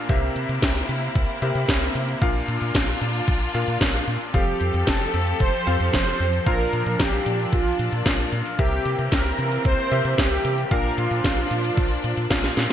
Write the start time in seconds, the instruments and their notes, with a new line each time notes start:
Already playing: string section A#3
0.09 analog synth bass C2, electric grand piano C3 C4 G4 A#4 E5, string section C4 E4, kick, closed hi-hat
0.23 closed hi-hat
0.36 analog synth bass C3, closed hi-hat
0.49 analog synth bass C3, closed hi-hat
0.62 analog synth bass C2, kick, snare, closed hi-hat
0.89 analog synth bass C3, closed hi-hat
1.02 closed hi-hat
1.16 analog synth bass C2, kick, closed hi-hat
1.29 closed hi-hat
1.42 analog synth bass C3, electric grand piano C3 C4 G4 A#4 E5, closed hi-hat
1.55 analog synth bass C3, closed hi-hat
1.69 analog synth bass C2, kick, snare, closed hi-hat
1.95 analog synth bass C3, closed hi-hat
2.08 closed hi-hat
2.22 analog synth bass A#1, electric grand piano A#2 D4 F4 A#4 F5, string section D4 F4, kick, closed hi-hat
2.35 closed hi-hat
2.48 analog synth bass A#2, closed hi-hat
2.61 analog synth bass A#2, closed hi-hat
2.75 analog synth bass A#1, kick, snare, closed hi-hat
3.01 analog synth bass A#2, closed hi-hat
3.15 closed hi-hat
3.28 analog synth bass A#1, kick, closed hi-hat
3.41 closed hi-hat
3.54 electric grand piano A#2 D4 F4 A#4 F5, analog synth bass A#2, closed hi-hat
3.68 analog synth bass A#2, closed hi-hat
3.81 analog synth bass A#1, kick, snare, closed hi-hat
4.07 analog synth bass A#2, closed hi-hat
4.21 closed hi-hat
4.34 analog synth bass F1, string section F3 C4 G4 A4, electric grand piano F3 C4 G4 A4 F5, analog polysynth G4, kick, closed hi-hat
4.47 closed hi-hat
4.61 analog synth bass F2, closed hi-hat
4.74 analog synth bass F2, closed hi-hat
4.87 analog synth bass F1, analog polysynth A4, kick, snare, closed hi-hat
5.14 analog synth bass F2, closed hi-hat
5.27 closed hi-hat
5.40 analog synth bass F1, analog polysynth C5, kick, closed hi-hat
5.54 closed hi-hat
5.67 analog synth bass F2, electric grand piano F3 C4 G4 A4 F5, closed hi-hat
5.80 analog synth bass F2, closed hi-hat
5.93 analog synth bass F1, analog polysynth C5, kick, snare, closed hi-hat
6.20 analog synth bass F2, closed hi-hat
6.33 closed hi-hat
6.46 analog synth bass A#1, electric grand piano A#2 D4 F4 A#4 F5, string section A#3 D4, analog polysynth A#4, kick, closed hi-hat
6.60 closed hi-hat
6.73 analog synth bass A#2, closed hi-hat
6.86 analog synth bass A#2, closed hi-hat
7.00 analog synth bass A#1, analog polysynth G4, kick, snare, closed hi-hat
7.26 analog synth bass A#2, closed hi-hat
7.39 closed hi-hat
7.53 analog synth bass A#1, analog polysynth F4, kick, closed hi-hat
7.66 closed hi-hat
7.79 analog synth bass A#2, closed hi-hat
7.92 analog synth bass A#2, closed hi-hat
8.06 analog synth bass A#1, electric grand piano A#2 D4 F4 A#4 F5, kick, snare, closed hi-hat
8.32 analog synth bass A#2, closed hi-hat
8.46 closed hi-hat
8.59 analog synth bass C2, electric grand piano C3 C4 G4 A#4 E5, string section E3 C4, analog polysynth G4, kick, closed hi-hat
8.72 closed hi-hat
8.85 analog synth bass C3, closed hi-hat
8.99 analog synth bass C3, closed hi-hat
9.12 analog synth bass C2, analog polysynth A#4, kick, snare, closed hi-hat
9.39 analog synth bass C3, closed hi-hat
9.52 closed hi-hat
9.65 analog synth bass C2, analog polysynth C5, kick, closed hi-hat
9.78 closed hi-hat
9.92 analog synth bass C3, electric grand piano C3 C4 G4 A#4 E5, closed hi-hat
10.05 analog synth bass C3, closed hi-hat
10.18 analog synth bass C2, analog polysynth G4, kick, snare, closed hi-hat
10.45 analog synth bass C3, closed hi-hat
10.58 closed hi-hat
10.71 analog synth bass A#1, electric grand piano A#2 D4 F4 A#4 F5, string section F3 D4, analog polysynth A#4, kick, closed hi-hat
10.85 closed hi-hat
10.98 analog synth bass A#2, analog polysynth F4, closed hi-hat
11.11 analog synth bass A#2, closed hi-hat
11.24 analog synth bass A#1, kick, snare, closed hi-hat
11.38 closed hi-hat
11.51 analog synth bass A#2, closed hi-hat
11.64 closed hi-hat
11.77 analog synth bass A#1, kick, closed hi-hat
11.91 closed hi-hat
12.04 analog synth bass A#2, closed hi-hat
12.17 analog synth bass A#2, closed hi-hat
12.30 analog synth bass A#1, electric grand piano A#2 D4 F4 A#4 F5, kick, snare, closed hi-hat
12.44 snare, closed hi-hat
12.57 analog synth bass A#2, snare, closed hi-hat